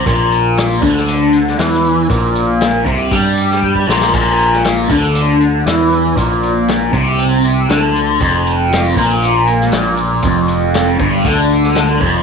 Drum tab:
CC |----------------|----------------|x---------------|----------------|
HH |x-x-x-x-x-x-x-x-|x-x-x-x-x-x-----|x-x-x-x-x-x-x-x-|x-x-x-x-x-x-x-x-|
SD |----o--o---ooo--|----o------o--oo|---oo-------o---|----o-------o---|
BD |o-----o---------|o-----o-o---oo--|o-----o---------|o-----o---------|

CC |----------------|----------------|
HH |x-x-x-x-x-x-x-x-|x-x-x-x-x-x-x-x-|
SD |----o------oo---|----o------oo---|
BD |o-----o---------|o-----o-o-----o-|